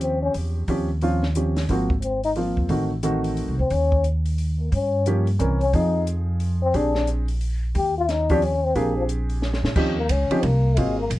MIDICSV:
0, 0, Header, 1, 6, 480
1, 0, Start_track
1, 0, Tempo, 336323
1, 970, Time_signature, 3, 2, 24, 8
1, 15970, End_track
2, 0, Start_track
2, 0, Title_t, "Trombone"
2, 0, Program_c, 0, 57
2, 32, Note_on_c, 0, 60, 71
2, 302, Note_off_c, 0, 60, 0
2, 322, Note_on_c, 0, 61, 89
2, 483, Note_off_c, 0, 61, 0
2, 2904, Note_on_c, 0, 60, 76
2, 3179, Note_off_c, 0, 60, 0
2, 3208, Note_on_c, 0, 63, 92
2, 3311, Note_off_c, 0, 63, 0
2, 5138, Note_on_c, 0, 60, 81
2, 5314, Note_on_c, 0, 61, 89
2, 5335, Note_off_c, 0, 60, 0
2, 5785, Note_off_c, 0, 61, 0
2, 6568, Note_on_c, 0, 58, 55
2, 6753, Note_on_c, 0, 61, 82
2, 6774, Note_off_c, 0, 58, 0
2, 7225, Note_off_c, 0, 61, 0
2, 8011, Note_on_c, 0, 61, 88
2, 8205, Note_on_c, 0, 63, 83
2, 8226, Note_off_c, 0, 61, 0
2, 8672, Note_off_c, 0, 63, 0
2, 9454, Note_on_c, 0, 60, 97
2, 9647, Note_on_c, 0, 62, 82
2, 9669, Note_off_c, 0, 60, 0
2, 10113, Note_off_c, 0, 62, 0
2, 11092, Note_on_c, 0, 67, 81
2, 11356, Note_off_c, 0, 67, 0
2, 11386, Note_on_c, 0, 65, 87
2, 11570, Note_on_c, 0, 63, 86
2, 11591, Note_off_c, 0, 65, 0
2, 11860, Note_on_c, 0, 62, 94
2, 11881, Note_off_c, 0, 63, 0
2, 12049, Note_on_c, 0, 61, 83
2, 12070, Note_off_c, 0, 62, 0
2, 12329, Note_on_c, 0, 60, 101
2, 12351, Note_off_c, 0, 61, 0
2, 12527, Note_on_c, 0, 58, 80
2, 12548, Note_off_c, 0, 60, 0
2, 12802, Note_off_c, 0, 58, 0
2, 12811, Note_on_c, 0, 53, 78
2, 12914, Note_off_c, 0, 53, 0
2, 14236, Note_on_c, 0, 58, 85
2, 14430, Note_on_c, 0, 61, 83
2, 14451, Note_off_c, 0, 58, 0
2, 14904, Note_on_c, 0, 58, 77
2, 14925, Note_off_c, 0, 61, 0
2, 15388, Note_on_c, 0, 56, 72
2, 15410, Note_off_c, 0, 58, 0
2, 15680, Note_off_c, 0, 56, 0
2, 15687, Note_on_c, 0, 58, 82
2, 15846, Note_off_c, 0, 58, 0
2, 15970, End_track
3, 0, Start_track
3, 0, Title_t, "Grand piano"
3, 0, Program_c, 1, 0
3, 0, Note_on_c, 1, 53, 53
3, 0, Note_on_c, 1, 60, 55
3, 0, Note_on_c, 1, 61, 49
3, 0, Note_on_c, 1, 67, 62
3, 864, Note_off_c, 1, 53, 0
3, 866, Note_off_c, 1, 60, 0
3, 870, Note_off_c, 1, 61, 0
3, 873, Note_off_c, 1, 67, 0
3, 981, Note_on_c, 1, 53, 54
3, 983, Note_on_c, 1, 60, 52
3, 996, Note_on_c, 1, 61, 55
3, 996, Note_on_c, 1, 67, 63
3, 1247, Note_off_c, 1, 53, 0
3, 1248, Note_off_c, 1, 60, 0
3, 1255, Note_off_c, 1, 61, 0
3, 1255, Note_off_c, 1, 67, 0
3, 1460, Note_on_c, 1, 53, 59
3, 1463, Note_on_c, 1, 60, 51
3, 1470, Note_on_c, 1, 61, 50
3, 1474, Note_on_c, 1, 65, 66
3, 1727, Note_off_c, 1, 53, 0
3, 1729, Note_off_c, 1, 60, 0
3, 1732, Note_off_c, 1, 61, 0
3, 1734, Note_off_c, 1, 65, 0
3, 1936, Note_on_c, 1, 53, 45
3, 1945, Note_on_c, 1, 60, 44
3, 1951, Note_on_c, 1, 61, 47
3, 1953, Note_on_c, 1, 67, 50
3, 2205, Note_off_c, 1, 53, 0
3, 2210, Note_off_c, 1, 60, 0
3, 2213, Note_off_c, 1, 61, 0
3, 2214, Note_off_c, 1, 67, 0
3, 2423, Note_on_c, 1, 53, 58
3, 2429, Note_on_c, 1, 58, 55
3, 2435, Note_on_c, 1, 60, 60
3, 2437, Note_on_c, 1, 66, 66
3, 2689, Note_off_c, 1, 53, 0
3, 2692, Note_off_c, 1, 58, 0
3, 2695, Note_off_c, 1, 60, 0
3, 2696, Note_off_c, 1, 66, 0
3, 3368, Note_on_c, 1, 53, 51
3, 3373, Note_on_c, 1, 58, 47
3, 3376, Note_on_c, 1, 60, 46
3, 3384, Note_on_c, 1, 65, 53
3, 3836, Note_off_c, 1, 60, 0
3, 3847, Note_on_c, 1, 51, 57
3, 3850, Note_on_c, 1, 57, 49
3, 3851, Note_off_c, 1, 53, 0
3, 3854, Note_off_c, 1, 58, 0
3, 3858, Note_on_c, 1, 60, 53
3, 3859, Note_off_c, 1, 65, 0
3, 3860, Note_on_c, 1, 66, 60
3, 4122, Note_off_c, 1, 51, 0
3, 4123, Note_off_c, 1, 57, 0
3, 4127, Note_off_c, 1, 60, 0
3, 4128, Note_off_c, 1, 66, 0
3, 4325, Note_on_c, 1, 51, 66
3, 4328, Note_on_c, 1, 57, 56
3, 4334, Note_on_c, 1, 60, 57
3, 4340, Note_on_c, 1, 66, 72
3, 5052, Note_off_c, 1, 51, 0
3, 5053, Note_off_c, 1, 57, 0
3, 5056, Note_off_c, 1, 60, 0
3, 5059, Note_off_c, 1, 66, 0
3, 7229, Note_on_c, 1, 58, 53
3, 7232, Note_on_c, 1, 53, 56
3, 7233, Note_on_c, 1, 61, 54
3, 7241, Note_on_c, 1, 67, 64
3, 7494, Note_off_c, 1, 58, 0
3, 7496, Note_off_c, 1, 53, 0
3, 7496, Note_off_c, 1, 61, 0
3, 7501, Note_off_c, 1, 67, 0
3, 7695, Note_on_c, 1, 52, 58
3, 7696, Note_on_c, 1, 60, 50
3, 7703, Note_on_c, 1, 61, 54
3, 7709, Note_on_c, 1, 70, 60
3, 7968, Note_off_c, 1, 52, 0
3, 7968, Note_off_c, 1, 60, 0
3, 7971, Note_off_c, 1, 61, 0
3, 7974, Note_off_c, 1, 70, 0
3, 8186, Note_on_c, 1, 53, 55
3, 8190, Note_on_c, 1, 60, 47
3, 8195, Note_on_c, 1, 63, 45
3, 8196, Note_on_c, 1, 68, 61
3, 9515, Note_off_c, 1, 53, 0
3, 9517, Note_off_c, 1, 60, 0
3, 9519, Note_off_c, 1, 63, 0
3, 9520, Note_off_c, 1, 68, 0
3, 9626, Note_on_c, 1, 67, 54
3, 9632, Note_on_c, 1, 60, 55
3, 9637, Note_on_c, 1, 68, 61
3, 9640, Note_on_c, 1, 62, 51
3, 10343, Note_off_c, 1, 67, 0
3, 10346, Note_off_c, 1, 60, 0
3, 10348, Note_off_c, 1, 68, 0
3, 10350, Note_off_c, 1, 62, 0
3, 11847, Note_on_c, 1, 53, 72
3, 11852, Note_on_c, 1, 61, 62
3, 11854, Note_on_c, 1, 60, 64
3, 11864, Note_on_c, 1, 67, 80
3, 12003, Note_off_c, 1, 53, 0
3, 12006, Note_off_c, 1, 61, 0
3, 12007, Note_off_c, 1, 60, 0
3, 12012, Note_off_c, 1, 67, 0
3, 12495, Note_on_c, 1, 67, 62
3, 12501, Note_on_c, 1, 62, 51
3, 12502, Note_on_c, 1, 60, 54
3, 12508, Note_on_c, 1, 68, 69
3, 13826, Note_off_c, 1, 67, 0
3, 13830, Note_off_c, 1, 60, 0
3, 13830, Note_off_c, 1, 62, 0
3, 13833, Note_off_c, 1, 68, 0
3, 13928, Note_on_c, 1, 53, 65
3, 13932, Note_on_c, 1, 61, 53
3, 13933, Note_on_c, 1, 60, 60
3, 13936, Note_on_c, 1, 63, 61
3, 13943, Note_on_c, 1, 67, 75
3, 14202, Note_off_c, 1, 53, 0
3, 14203, Note_off_c, 1, 61, 0
3, 14204, Note_off_c, 1, 60, 0
3, 14206, Note_off_c, 1, 63, 0
3, 14209, Note_off_c, 1, 67, 0
3, 14712, Note_on_c, 1, 60, 60
3, 14713, Note_on_c, 1, 53, 65
3, 14718, Note_on_c, 1, 61, 56
3, 14722, Note_on_c, 1, 67, 67
3, 14723, Note_on_c, 1, 63, 60
3, 14874, Note_off_c, 1, 53, 0
3, 14874, Note_off_c, 1, 60, 0
3, 14876, Note_off_c, 1, 61, 0
3, 14879, Note_off_c, 1, 63, 0
3, 14879, Note_off_c, 1, 67, 0
3, 15377, Note_on_c, 1, 54, 55
3, 15383, Note_on_c, 1, 58, 50
3, 15383, Note_on_c, 1, 60, 54
3, 15388, Note_on_c, 1, 65, 55
3, 15392, Note_on_c, 1, 68, 59
3, 15644, Note_off_c, 1, 54, 0
3, 15647, Note_off_c, 1, 60, 0
3, 15648, Note_off_c, 1, 58, 0
3, 15650, Note_off_c, 1, 65, 0
3, 15652, Note_off_c, 1, 68, 0
3, 15970, End_track
4, 0, Start_track
4, 0, Title_t, "Upright bass"
4, 0, Program_c, 2, 32
4, 0, Note_on_c, 2, 39, 81
4, 432, Note_off_c, 2, 39, 0
4, 489, Note_on_c, 2, 40, 72
4, 936, Note_off_c, 2, 40, 0
4, 970, Note_on_c, 2, 39, 88
4, 2355, Note_off_c, 2, 39, 0
4, 2410, Note_on_c, 2, 32, 81
4, 3617, Note_off_c, 2, 32, 0
4, 3663, Note_on_c, 2, 40, 67
4, 3829, Note_off_c, 2, 40, 0
4, 3838, Note_on_c, 2, 33, 82
4, 4910, Note_off_c, 2, 33, 0
4, 4970, Note_on_c, 2, 36, 58
4, 5114, Note_off_c, 2, 36, 0
4, 5122, Note_on_c, 2, 38, 62
4, 5277, Note_off_c, 2, 38, 0
4, 5286, Note_on_c, 2, 39, 84
4, 6675, Note_off_c, 2, 39, 0
4, 6735, Note_on_c, 2, 43, 81
4, 7640, Note_off_c, 2, 43, 0
4, 7705, Note_on_c, 2, 36, 70
4, 8148, Note_off_c, 2, 36, 0
4, 8182, Note_on_c, 2, 41, 85
4, 9563, Note_off_c, 2, 41, 0
4, 9619, Note_on_c, 2, 34, 78
4, 11001, Note_off_c, 2, 34, 0
4, 11061, Note_on_c, 2, 39, 84
4, 12441, Note_off_c, 2, 39, 0
4, 12495, Note_on_c, 2, 34, 79
4, 13698, Note_off_c, 2, 34, 0
4, 13747, Note_on_c, 2, 46, 64
4, 13917, Note_off_c, 2, 46, 0
4, 13926, Note_on_c, 2, 39, 82
4, 14394, Note_off_c, 2, 39, 0
4, 14407, Note_on_c, 2, 37, 80
4, 14689, Note_off_c, 2, 37, 0
4, 14887, Note_on_c, 2, 36, 90
4, 15354, Note_off_c, 2, 36, 0
4, 15364, Note_on_c, 2, 32, 79
4, 15832, Note_off_c, 2, 32, 0
4, 15844, Note_on_c, 2, 34, 90
4, 15970, Note_off_c, 2, 34, 0
4, 15970, End_track
5, 0, Start_track
5, 0, Title_t, "Muted upright bass strokes"
5, 14700, Note_on_c, 9, 29, 34
5, 14843, Note_off_c, 9, 29, 0
5, 15970, End_track
6, 0, Start_track
6, 0, Title_t, "Drums"
6, 12, Note_on_c, 9, 42, 50
6, 155, Note_off_c, 9, 42, 0
6, 489, Note_on_c, 9, 46, 52
6, 631, Note_off_c, 9, 46, 0
6, 966, Note_on_c, 9, 46, 46
6, 972, Note_on_c, 9, 36, 33
6, 1109, Note_off_c, 9, 46, 0
6, 1114, Note_off_c, 9, 36, 0
6, 1447, Note_on_c, 9, 46, 45
6, 1590, Note_off_c, 9, 46, 0
6, 1753, Note_on_c, 9, 38, 36
6, 1896, Note_off_c, 9, 38, 0
6, 1928, Note_on_c, 9, 42, 57
6, 2071, Note_off_c, 9, 42, 0
6, 2232, Note_on_c, 9, 46, 39
6, 2236, Note_on_c, 9, 38, 51
6, 2375, Note_off_c, 9, 46, 0
6, 2379, Note_off_c, 9, 38, 0
6, 2410, Note_on_c, 9, 46, 46
6, 2411, Note_on_c, 9, 36, 31
6, 2553, Note_off_c, 9, 46, 0
6, 2554, Note_off_c, 9, 36, 0
6, 2711, Note_on_c, 9, 36, 68
6, 2854, Note_off_c, 9, 36, 0
6, 2887, Note_on_c, 9, 42, 52
6, 3029, Note_off_c, 9, 42, 0
6, 3190, Note_on_c, 9, 46, 39
6, 3333, Note_off_c, 9, 46, 0
6, 3363, Note_on_c, 9, 46, 46
6, 3505, Note_off_c, 9, 46, 0
6, 3669, Note_on_c, 9, 36, 44
6, 3812, Note_off_c, 9, 36, 0
6, 3839, Note_on_c, 9, 46, 44
6, 3846, Note_on_c, 9, 36, 31
6, 3982, Note_off_c, 9, 46, 0
6, 3989, Note_off_c, 9, 36, 0
6, 4323, Note_on_c, 9, 42, 53
6, 4466, Note_off_c, 9, 42, 0
6, 4627, Note_on_c, 9, 46, 42
6, 4770, Note_off_c, 9, 46, 0
6, 4807, Note_on_c, 9, 46, 46
6, 4950, Note_off_c, 9, 46, 0
6, 5285, Note_on_c, 9, 46, 47
6, 5291, Note_on_c, 9, 36, 34
6, 5428, Note_off_c, 9, 46, 0
6, 5434, Note_off_c, 9, 36, 0
6, 5594, Note_on_c, 9, 36, 52
6, 5737, Note_off_c, 9, 36, 0
6, 5767, Note_on_c, 9, 42, 49
6, 5910, Note_off_c, 9, 42, 0
6, 6073, Note_on_c, 9, 46, 42
6, 6215, Note_off_c, 9, 46, 0
6, 6253, Note_on_c, 9, 46, 49
6, 6396, Note_off_c, 9, 46, 0
6, 6740, Note_on_c, 9, 46, 47
6, 6742, Note_on_c, 9, 36, 35
6, 6882, Note_off_c, 9, 46, 0
6, 6884, Note_off_c, 9, 36, 0
6, 7220, Note_on_c, 9, 42, 56
6, 7363, Note_off_c, 9, 42, 0
6, 7523, Note_on_c, 9, 46, 37
6, 7665, Note_off_c, 9, 46, 0
6, 7701, Note_on_c, 9, 42, 59
6, 7844, Note_off_c, 9, 42, 0
6, 8005, Note_on_c, 9, 46, 38
6, 8148, Note_off_c, 9, 46, 0
6, 8184, Note_on_c, 9, 36, 36
6, 8184, Note_on_c, 9, 46, 48
6, 8327, Note_off_c, 9, 36, 0
6, 8327, Note_off_c, 9, 46, 0
6, 8663, Note_on_c, 9, 42, 50
6, 8806, Note_off_c, 9, 42, 0
6, 9133, Note_on_c, 9, 46, 46
6, 9276, Note_off_c, 9, 46, 0
6, 9620, Note_on_c, 9, 46, 49
6, 9621, Note_on_c, 9, 36, 33
6, 9763, Note_off_c, 9, 46, 0
6, 9764, Note_off_c, 9, 36, 0
6, 9919, Note_on_c, 9, 38, 47
6, 10062, Note_off_c, 9, 38, 0
6, 10094, Note_on_c, 9, 42, 53
6, 10237, Note_off_c, 9, 42, 0
6, 10393, Note_on_c, 9, 46, 40
6, 10536, Note_off_c, 9, 46, 0
6, 10573, Note_on_c, 9, 46, 45
6, 10716, Note_off_c, 9, 46, 0
6, 11059, Note_on_c, 9, 46, 46
6, 11064, Note_on_c, 9, 36, 35
6, 11202, Note_off_c, 9, 46, 0
6, 11207, Note_off_c, 9, 36, 0
6, 11541, Note_on_c, 9, 42, 51
6, 11545, Note_on_c, 9, 38, 37
6, 11684, Note_off_c, 9, 42, 0
6, 11688, Note_off_c, 9, 38, 0
6, 11838, Note_on_c, 9, 46, 39
6, 11844, Note_on_c, 9, 36, 57
6, 11980, Note_off_c, 9, 46, 0
6, 11986, Note_off_c, 9, 36, 0
6, 12017, Note_on_c, 9, 46, 46
6, 12159, Note_off_c, 9, 46, 0
6, 12495, Note_on_c, 9, 46, 44
6, 12498, Note_on_c, 9, 36, 31
6, 12638, Note_off_c, 9, 46, 0
6, 12641, Note_off_c, 9, 36, 0
6, 12973, Note_on_c, 9, 42, 54
6, 13115, Note_off_c, 9, 42, 0
6, 13266, Note_on_c, 9, 46, 39
6, 13409, Note_off_c, 9, 46, 0
6, 13449, Note_on_c, 9, 38, 50
6, 13592, Note_off_c, 9, 38, 0
6, 13609, Note_on_c, 9, 38, 53
6, 13751, Note_off_c, 9, 38, 0
6, 13767, Note_on_c, 9, 38, 72
6, 13910, Note_off_c, 9, 38, 0
6, 13926, Note_on_c, 9, 49, 79
6, 13927, Note_on_c, 9, 36, 78
6, 14069, Note_off_c, 9, 49, 0
6, 14070, Note_off_c, 9, 36, 0
6, 14403, Note_on_c, 9, 44, 51
6, 14403, Note_on_c, 9, 51, 65
6, 14408, Note_on_c, 9, 36, 22
6, 14546, Note_off_c, 9, 44, 0
6, 14546, Note_off_c, 9, 51, 0
6, 14551, Note_off_c, 9, 36, 0
6, 14710, Note_on_c, 9, 51, 48
6, 14853, Note_off_c, 9, 51, 0
6, 14884, Note_on_c, 9, 51, 61
6, 14889, Note_on_c, 9, 36, 25
6, 15026, Note_off_c, 9, 51, 0
6, 15032, Note_off_c, 9, 36, 0
6, 15368, Note_on_c, 9, 51, 62
6, 15369, Note_on_c, 9, 36, 22
6, 15510, Note_off_c, 9, 51, 0
6, 15511, Note_off_c, 9, 36, 0
6, 15850, Note_on_c, 9, 36, 23
6, 15851, Note_on_c, 9, 44, 63
6, 15851, Note_on_c, 9, 51, 59
6, 15970, Note_off_c, 9, 36, 0
6, 15970, Note_off_c, 9, 44, 0
6, 15970, Note_off_c, 9, 51, 0
6, 15970, End_track
0, 0, End_of_file